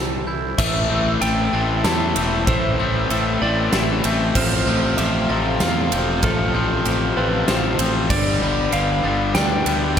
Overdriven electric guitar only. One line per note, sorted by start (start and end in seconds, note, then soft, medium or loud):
0.59 0.90 A2 medium
0.59 0.91 E3 loud
0.59 0.91 A3 loud
0.91 1.22 A2 medium
0.91 1.22 E3 medium
0.91 1.23 A3 loud
1.22 1.53 A2 medium
1.22 1.52 E3 medium
1.22 1.54 A3 medium
1.53 1.84 A2 medium
1.53 1.84 E3 medium
1.53 1.85 A3 medium
1.85 2.16 A2 loud
1.85 2.16 E3 loud
1.85 2.17 A3 loud
2.16 2.48 A2 medium
2.16 2.47 E3 medium
2.16 2.48 A3 medium
2.48 2.79 A2 loud
2.48 2.79 E3 loud
2.48 2.80 A3 loud
2.80 3.10 A2 medium
2.80 3.10 E3 medium
2.80 3.11 A3 loud
3.11 3.42 A2 medium
3.11 3.42 E3 medium
3.11 3.43 A3 loud
3.42 3.73 A2 medium
3.42 3.73 E3 medium
3.42 3.74 A3 loud
3.73 4.05 A2 loud
3.73 4.04 E3 loud
3.73 4.05 A3 loud
4.05 4.36 A2 loud
4.05 4.34 E3 loud
4.05 7.56 A3 loud
4.36 4.66 F2 loud
4.36 4.67 C3 loud
4.36 4.68 F3 loud
4.68 4.98 F2 medium
4.68 4.98 C3 loud
4.68 4.99 F3 loud
4.99 5.29 F2 medium
4.99 5.30 C3 medium
4.99 5.30 F3 loud
5.30 5.60 F2 medium
5.30 5.61 C3 loud
5.30 5.61 F3 loud
5.62 5.92 F2 loud
5.62 5.92 C3 loud
5.62 5.92 F3 loud
5.93 6.23 F2 medium
5.93 6.23 C3 loud
5.93 6.23 F3 loud
6.24 6.53 F2 loud
6.24 6.54 C3 loud
6.24 6.54 F3 loud
6.55 6.85 F2 medium
6.55 6.85 C3 loud
6.55 6.86 F3 loud
6.86 7.16 F2 medium
6.86 7.16 C3 medium
6.86 7.17 F3 medium
7.17 7.47 F2 medium
7.17 7.48 C3 loud
7.17 7.48 F3 loud
7.48 7.78 F2 loud
7.48 7.79 C3 loud
7.48 7.79 F3 loud
7.80 8.09 F2 loud
7.80 8.09 C3 medium
7.80 8.09 F3 loud
8.10 8.42 G2 medium
8.10 8.41 D3 loud
8.10 8.43 G3 loud
8.42 8.72 G2 medium
8.42 8.72 D3 medium
8.42 8.73 G3 medium
8.73 9.03 G2 medium
8.73 9.03 D3 medium
8.73 9.05 G3 medium
9.04 9.34 G2 medium
9.04 9.35 D3 medium
9.04 9.36 G3 loud
9.35 9.65 G2 loud
9.35 9.66 D3 loud
9.35 9.67 G3 loud
9.67 9.96 G2 medium
9.67 9.96 D3 medium
9.67 9.98 G3 medium